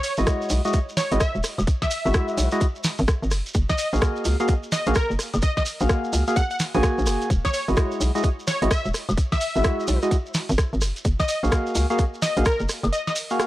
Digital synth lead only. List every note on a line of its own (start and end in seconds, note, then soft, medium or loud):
0.04 0.13 C#5 medium
0.97 1.12 C#5 medium
1.21 1.35 E5 medium
1.82 2.47 E5 loud
3.70 3.75 D#5 medium
3.79 3.88 D#5 medium
4.72 4.87 D#5 medium
4.96 5.10 A#4 medium
5.43 5.52 D#5 medium
5.57 5.63 D#5 medium
6.36 6.46 F#5 medium
6.51 6.56 F#5 medium
7.45 7.50 C#5 medium
7.54 7.63 C#5 medium
8.47 8.62 C#5 medium
8.71 8.86 E5 loud
9.32 9.97 E5 loud
11.20 11.25 D#5 medium
11.29 11.38 D#5 medium
12.22 12.37 D#5 medium
12.46 12.60 A#4 loud
12.92 13.02 D#5 medium
13.07 13.13 D#5 medium